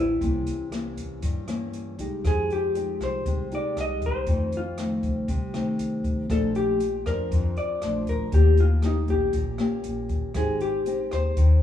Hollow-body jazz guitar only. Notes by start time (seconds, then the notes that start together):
0.00 E4
2.27 G#4
2.53 G4
3.04 C5
3.55 D5
3.81 D#5
4.06 C5
4.57 F4
6.31 A4
6.56 G4
7.07 A#4
7.58 D5
8.09 A#4
8.34 G4
8.60 F4
8.85 D#4
9.10 G4
10.37 G#4
10.62 G4
11.13 C5